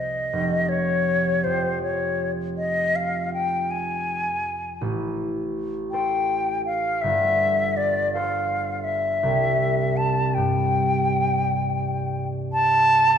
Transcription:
Already playing: harp C2, flute D#5
0.33 harp F1
0.69 flute C#5
1.44 harp F2, flute C5
1.83 flute C#5
2.57 flute D#5
2.96 flute F5
3.34 flute G5
3.71 flute G#5
4.81 harp A1
5.91 harp A4 C5, flute G5
6.66 flute F5
7.02 harp G1, flute E5
7.77 flute D5
8.13 harp A4 C5, flute F5
8.84 flute E5
9.23 harp C2
9.96 flute A5
10.34 harp G2, flute G5
12.53 flute A5

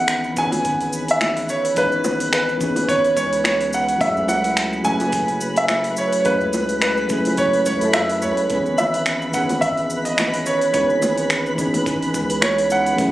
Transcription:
Already playing: analog synth bass G#1, synth keys E3 B3 C#4 D#4 G#4, synth texture B4 B5, grand piano F#5
0.08 finger snap, open hi-hat, cabasa
0.24 cabasa
0.34 analog synth bass G#1, synth keys E3 B3 C#4, kick, cabasa
0.38 synth keys D#3 G#4, grand piano G#5
0.52 open hi-hat, high bongo, cabasa
0.65 kick, open hi-hat, cabasa
0.81 open hi-hat, cabasa
0.93 cabasa
1.08 grand piano E5, open hi-hat, cabasa
1.21 finger snap, open hi-hat, high bongo, cabasa
1.37 open hi-hat, cabasa
1.49 grand piano C#5, cabasa
1.65 open hi-hat, cabasa
1.74 analog synth bass C#2, synth keys E3 B3 C#4, grand piano B4, kick, open hi-hat, cabasa
1.79 synth keys D#4 G#4
1.92 analog synth bass G#1, cabasa
2.04 high bongo, cabasa
2.20 open hi-hat, cabasa
2.33 grand piano B4, finger snap, open hi-hat, cabasa
2.49 cabasa
2.57 analog synth bass G#1, synth keys E3 B3 C#4, kick, cabasa
2.62 synth keys D#4 G#4
2.76 open hi-hat, high bongo, cabasa
2.88 grand piano C#5, kick, open hi-hat, cabasa
3.04 open hi-hat, cabasa
3.16 analog synth bass C#2, grand piano C#5, kick, cabasa
3.33 open hi-hat, cabasa
3.44 grand piano C#5, finger snap, open hi-hat, high bongo, cabasa
3.61 open hi-hat, cabasa
3.73 grand piano F#5, cabasa
3.89 open hi-hat, cabasa
3.97 analog synth bass F#2, synth keys F#3 A3 C#4, grand piano E5, kick, open hi-hat, cabasa
4.03 synth keys E4 G#4
4.16 analog synth bass C#2, cabasa
4.28 grand piano F#5, high bongo, cabasa
4.44 open hi-hat, cabasa
4.57 finger snap, open hi-hat, cabasa
4.73 cabasa
4.82 analog synth bass F#1, synth keys F#3 A3 C#4, grand piano G#5, kick, cabasa
4.87 synth keys E4 G#4
5.00 open hi-hat, high bongo, cabasa
5.12 kick, open hi-hat, cabasa
5.28 open hi-hat, cabasa
5.41 cabasa
5.56 grand piano E5, open hi-hat, cabasa
5.68 finger snap, open hi-hat, high bongo, cabasa
5.84 open hi-hat, cabasa
5.97 grand piano C#5, cabasa
6.12 open hi-hat, cabasa
6.20 grand piano C#5
6.24 analog synth bass F#2, synth keys F#3 A3 C#4, grand piano B4, kick, open hi-hat, cabasa
6.28 synth keys E4 G#4
6.41 analog synth bass C#2, cabasa
6.53 open hi-hat, high bongo, cabasa
6.69 open hi-hat, cabasa
6.82 grand piano B4, finger snap, open hi-hat, cabasa
6.97 cabasa
7.07 analog synth bass F#1, synth keys F#3 A3 C#4, kick, cabasa
7.11 synth keys E4 G#4
7.25 open hi-hat, high bongo, cabasa
7.37 grand piano C#5, kick, open hi-hat, cabasa
7.53 open hi-hat, cabasa
7.66 analog synth bass C#2, grand piano C#5, kick, cabasa
7.79 analog synth bass F#2, synth keys F#3 A3 C#4, open hi-hat, cabasa
7.84 synth keys E4 A4
7.93 grand piano E5, finger snap, open hi-hat, high bongo, cabasa
8.09 open hi-hat, cabasa
8.22 analog synth bass C#2, grand piano C#5, cabasa
8.37 open hi-hat, cabasa
8.49 analog synth bass C#2, synth keys E3 B3 C#4, kick, open hi-hat, cabasa
8.53 synth keys D#3 G#4
8.66 analog synth bass G#1, cabasa
8.78 grand piano E5, high bongo, cabasa
8.94 open hi-hat, cabasa
9.06 finger snap, open hi-hat, cabasa
9.22 cabasa
9.31 analog synth bass G#1, synth keys E3 B3 C#4, grand piano F#5, kick, cabasa
9.36 synth keys D#3 G#4
9.49 open hi-hat, high bongo, cabasa
9.61 grand piano E5, kick, open hi-hat, cabasa
9.77 open hi-hat, cabasa
9.90 cabasa
10.05 grand piano D#5, open hi-hat, cabasa
10.18 finger snap, open hi-hat, high bongo, cabasa
10.34 open hi-hat, cabasa
10.46 grand piano C#5, cabasa
10.62 open hi-hat, cabasa
10.71 analog synth bass C#2, synth keys E3 B3 C#4, grand piano C#5, kick, open hi-hat, cabasa
10.75 synth keys D#4 G#4
10.90 analog synth bass G#1, cabasa
11.02 high bongo, cabasa
11.18 open hi-hat, cabasa
11.30 finger snap, open hi-hat, cabasa
11.46 cabasa
11.55 analog synth bass G#1, synth keys E3 B3 C#4, kick, cabasa
11.59 synth keys D#4 G#4
11.74 open hi-hat, high bongo, cabasa
11.86 kick, open hi-hat, cabasa
12.03 open hi-hat, cabasa
12.14 analog synth bass C#2, kick, cabasa
12.30 open hi-hat, cabasa
12.41 grand piano C#5, finger snap, open hi-hat, high bongo, cabasa
12.58 open hi-hat, cabasa
12.70 grand piano F#5, cabasa
12.86 open hi-hat, cabasa
12.94 synth keys F#3 A3 C#4
12.98 analog synth bass F#2, synth keys E4 G#4, kick, open hi-hat, cabasa

